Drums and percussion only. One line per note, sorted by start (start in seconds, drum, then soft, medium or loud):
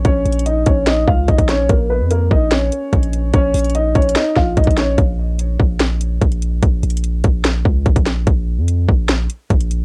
0.05 kick loud
0.05 closed hi-hat medium
0.26 closed hi-hat soft
0.33 closed hi-hat medium
0.39 closed hi-hat medium
0.46 closed hi-hat medium
0.66 kick medium
0.66 closed hi-hat medium
0.87 snare loud
0.87 closed hi-hat medium
1.08 kick medium
1.28 kick medium
1.28 closed hi-hat soft
1.38 kick medium
1.38 closed hi-hat medium
1.49 snare medium
1.49 closed hi-hat medium
1.69 kick loud
1.69 closed hi-hat medium
2.10 closed hi-hat medium
2.31 kick loud
2.51 snare loud
2.51 closed hi-hat medium
2.72 closed hi-hat medium
2.93 kick medium
2.93 closed hi-hat medium
3.03 closed hi-hat medium
3.13 closed hi-hat medium
3.33 kick loud
3.33 closed hi-hat medium
3.54 closed hi-hat medium
3.54 open hi-hat medium
3.59 closed hi-hat medium
3.65 closed hi-hat medium
3.70 closed hi-hat medium
3.75 closed hi-hat medium
3.95 kick medium
3.95 closed hi-hat soft
4.02 closed hi-hat medium
4.09 closed hi-hat medium
4.15 snare loud
4.15 closed hi-hat medium
4.36 kick medium
4.36 snare medium
4.57 kick medium
4.57 closed hi-hat medium
4.64 kick medium
4.64 closed hi-hat medium
4.71 closed hi-hat medium
4.77 snare medium
4.77 closed hi-hat medium
4.98 kick loud
4.98 closed hi-hat medium
5.39 closed hi-hat medium
5.60 kick medium
5.80 snare loud
5.80 closed hi-hat medium
6.01 closed hi-hat medium
6.21 kick medium
6.21 closed hi-hat medium
6.32 closed hi-hat medium
6.42 closed hi-hat medium
6.62 kick loud
6.62 closed hi-hat medium
6.83 closed hi-hat soft
6.90 closed hi-hat medium
6.97 closed hi-hat medium
7.04 closed hi-hat medium
7.24 kick medium
7.24 closed hi-hat medium
7.44 snare loud
7.44 closed hi-hat medium
7.65 kick medium
7.86 kick medium
7.86 closed hi-hat soft
7.96 kick medium
7.96 closed hi-hat medium
8.06 snare medium
8.06 closed hi-hat medium
8.27 kick loud
8.27 closed hi-hat medium
8.68 closed hi-hat medium
8.88 kick loud
9.09 snare loud
9.09 closed hi-hat medium
9.30 closed hi-hat medium
9.50 kick medium
9.50 closed hi-hat medium
9.60 closed hi-hat medium
9.71 closed hi-hat medium